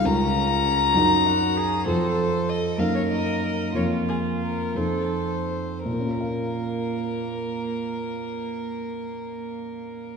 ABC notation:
X:1
M:6/8
L:1/16
Q:3/8=58
K:Bbm
V:1 name="Violin"
b12 | c4 e2 f d e2 e2 | d2 A2 B2 c6 | B12- |
B12 |]
V:2 name="Cello"
D6 E2 G2 A2 | =A6 B6 | F6 =A3 z3 | B,12- |
B,12 |]
V:3 name="Grand piano"
[D,,DFB]6 [G,,EGB]6 | [F,,CF=A]6 [G,,B,EB]6 | [F,,B,FB]6 [F,,CE=A]6 | [B,,B,DFBf]12- |
[B,,B,DFBf]12 |]